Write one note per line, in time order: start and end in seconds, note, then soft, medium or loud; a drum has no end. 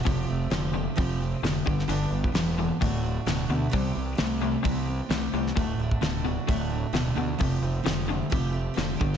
0.03 0.24 F1 medium
0.03 0.47 F2 medium
0.03 0.47 C3 medium
0.03 0.27 F3 medium
0.03 0.27 A3 medium
0.03 0.27 C4 medium
0.03 0.25 G4 medium
0.03 kick loud
0.07 open hi-hat soft
0.27 0.47 F1 medium
0.27 0.50 A3 soft
0.27 0.51 C4 soft
0.27 0.50 G4 medium
0.50 0.86 F1 medium
0.50 0.72 F2 medium
0.50 0.72 D3 medium
0.50 0.74 F3 medium
0.50 0.74 A3 medium
0.50 0.74 C4 medium
0.50 0.72 G4 medium
0.50 snare loud
0.50 open hi-hat soft
0.73 0.94 F2 medium
0.73 0.95 D3 medium
0.73 0.96 C4 soft
0.73 0.96 G4 soft
0.77 0.95 A3 soft
0.96 1.33 F1 medium
0.96 1.39 F2 medium
0.96 1.39 C3 medium
0.96 1.19 F3 medium
0.96 1.20 A3 medium
0.96 1.20 C4 medium
0.96 1.18 G4 medium
0.96 kick loud
0.96 open hi-hat soft
1.19 1.44 A3 soft
1.19 1.44 C4 soft
1.19 1.43 G4 medium
1.42 1.60 F1 medium
1.42 1.64 F2 medium
1.42 1.64 D3 medium
1.42 1.66 F3 medium
1.42 1.67 A3 medium
1.42 1.67 C4 medium
1.42 snare medium
1.42 open hi-hat soft
1.47 1.65 G4 medium
1.66 1.84 G1 medium
1.66 1.86 G2 medium
1.66 1.87 D3 medium
1.66 1.89 G3 soft
1.66 1.89 B3 soft
1.66 1.89 D4 soft
1.66 1.89 G4 medium
1.66 kick medium
1.79 snare soft
1.88 2.06 G1 medium
1.88 2.11 G2 medium
1.88 2.30 G2 medium
1.88 2.12 D3 medium
1.88 2.30 D3 medium
1.88 2.12 G3 medium
1.88 2.12 B3 medium
1.88 2.10 D4 medium
1.88 2.09 G4 medium
1.88 open hi-hat soft
2.10 2.28 G1 medium
2.10 2.31 G3 soft
2.10 2.33 B3 medium
2.10 2.33 D4 medium
2.10 2.34 G4 medium
2.24 kick medium
2.32 2.69 E1 medium
2.32 2.56 G2 medium
2.32 2.56 E3 medium
2.32 2.56 G3 medium
2.32 2.57 B3 medium
2.32 2.58 D4 medium
2.32 2.57 G4 medium
2.32 snare loud
2.32 open hi-hat soft
2.58 2.79 G2 medium
2.58 2.79 E3 medium
2.58 2.80 G3 soft
2.58 2.82 B3 soft
2.58 2.82 D4 soft
2.58 2.81 G4 soft
2.81 3.17 D1 medium
2.81 3.22 D2 medium
2.81 3.22 A2 medium
2.81 3.04 D3 medium
2.81 3.04 A3 medium
2.81 3.03 D4 medium
2.81 3.02 F#4 medium
2.81 kick medium
2.81 open hi-hat soft
3.03 3.27 A3 soft
3.03 3.27 D4 soft
3.03 3.26 F#4 medium
3.26 3.44 D1 medium
3.26 3.47 D2 medium
3.26 3.47 B2 medium
3.26 3.49 D3 medium
3.26 3.50 A3 medium
3.26 3.50 D4 medium
3.26 3.49 F#4 medium
3.26 snare medium
3.26 open hi-hat soft
3.48 3.67 D2 medium
3.48 3.70 D2 medium
3.48 3.71 B2 medium
3.48 3.71 D4 medium
3.48 3.72 F#4 medium
3.53 3.71 A3 soft
3.70 3.94 C3 medium
3.70 4.14 C3 medium
3.70 3.95 E3 medium
3.70 3.95 G3 medium
3.70 3.95 C4 medium
3.70 3.94 G4 medium
3.70 kick loud
3.70 open hi-hat soft
3.74 3.91 C2 medium
3.74 4.14 G3 medium
3.95 4.13 C2 medium
3.95 4.16 G3 soft
3.95 4.17 C4 soft
3.95 4.18 G4 soft
4.15 4.39 C3 medium
4.15 4.40 E3 medium
4.15 4.41 G3 medium
4.15 4.41 C4 medium
4.15 4.39 G4 medium
4.15 snare loud
4.15 open hi-hat soft
4.19 4.55 C2 medium
4.19 4.39 A3 medium
4.40 4.62 C3 medium
4.40 4.64 G3 soft
4.40 4.62 A3 medium
4.40 4.65 C4 soft
4.40 4.64 G4 soft
4.63 5.00 C2 medium
4.63 5.05 C3 medium
4.63 4.87 C3 medium
4.63 4.88 E3 medium
4.63 5.05 G3 medium
4.63 4.88 G3 medium
4.63 4.88 C4 medium
4.63 4.86 G4 medium
4.63 kick loud
4.63 open hi-hat soft
4.87 5.11 G3 soft
4.87 5.11 C4 soft
4.87 5.10 G4 soft
5.10 5.27 C2 medium
5.10 5.31 C3 medium
5.10 5.33 E3 medium
5.10 5.34 G3 medium
5.10 5.31 A3 medium
5.10 5.33 C4 medium
5.10 snare medium
5.10 open hi-hat soft
5.14 5.32 G4 medium
5.33 5.50 C2 medium
5.33 5.54 C3 medium
5.33 5.57 G3 soft
5.33 5.54 A3 medium
5.33 5.57 C4 soft
5.33 5.56 G4 medium
5.47 snare soft
5.56 5.74 D1 medium
5.56 5.97 D2 medium
5.56 5.97 A2 medium
5.56 5.79 D3 medium
5.56 5.80 A3 medium
5.56 5.80 D4 medium
5.56 5.78 F#4 medium
5.56 kick loud
5.56 open hi-hat soft
5.78 5.96 D1 medium
5.78 6.03 D4 medium
5.78 6.02 F#4 medium
5.83 6.02 A3 soft
5.91 kick medium
6.01 6.36 D1 medium
6.01 6.22 D2 medium
6.01 6.23 B2 medium
6.01 6.24 D3 medium
6.01 6.26 A3 medium
6.01 6.25 D4 medium
6.01 snare loud
6.01 open hi-hat soft
6.05 6.23 F#4 medium
6.25 6.45 D2 medium
6.25 6.45 B2 medium
6.25 6.48 A3 soft
6.25 6.48 D4 soft
6.25 6.47 F#4 medium
6.48 6.84 D1 medium
6.48 6.89 D2 medium
6.48 6.89 A2 medium
6.48 6.71 D3 medium
6.48 6.71 A3 medium
6.48 6.70 D4 medium
6.48 6.69 F#4 loud
6.48 kick loud
6.48 open hi-hat soft
6.70 6.92 A3 soft
6.70 6.93 D4 soft
6.70 6.93 F#4 medium
6.92 7.10 D1 medium
6.92 7.14 D2 medium
6.92 7.14 B2 medium
6.92 7.16 D3 medium
6.92 7.16 A3 medium
6.92 7.15 D4 medium
6.92 7.13 F#4 medium
6.92 snare medium
6.92 open hi-hat soft
7.14 7.34 D2 medium
7.14 7.37 D2 medium
7.14 7.38 B2 medium
7.14 7.39 D4 medium
7.14 7.38 F#4 medium
7.18 7.38 A3 soft
7.39 7.58 F1 medium
7.39 7.81 F2 medium
7.39 7.81 C3 medium
7.39 7.62 F3 medium
7.39 7.62 A3 medium
7.39 7.62 C4 medium
7.39 7.60 G4 medium
7.39 kick loud
7.39 open hi-hat soft
7.61 7.80 F1 medium
7.61 7.85 A3 soft
7.61 7.85 C4 soft
7.61 7.84 G4 medium
7.84 8.21 F1 medium
7.84 8.06 F2 medium
7.84 8.06 D3 medium
7.84 8.07 F3 medium
7.84 8.09 A3 medium
7.84 8.08 C4 medium
7.84 8.05 G4 medium
7.84 snare loud
7.84 open hi-hat soft
8.07 8.29 F2 medium
8.07 8.29 D3 medium
8.07 8.30 A3 soft
8.07 8.30 C4 soft
8.07 8.30 G4 soft
8.30 8.67 F1 medium
8.30 8.73 F2 medium
8.30 8.73 C3 medium
8.30 8.53 F3 medium
8.30 8.53 A3 medium
8.30 8.51 C4 medium
8.30 8.49 G4 medium
8.30 kick loud
8.30 open hi-hat soft
8.50 8.75 C4 soft
8.50 8.75 G4 medium
8.54 8.73 A3 soft
8.74 8.95 F1 medium
8.74 8.98 F2 medium
8.74 8.98 F3 medium
8.74 8.99 A3 medium
8.74 8.97 C4 medium
8.74 8.95 G4 medium
8.74 open hi-hat soft
8.78 8.98 D3 medium
8.78 snare medium
8.96 9.17 G3 soft
8.96 9.17 B3 medium
8.96 9.17 D4 medium
8.96 9.17 G4 medium
9.01 9.17 G1 medium
9.01 9.17 G2 medium
9.01 9.17 D3 medium
9.01 kick loud
9.14 snare soft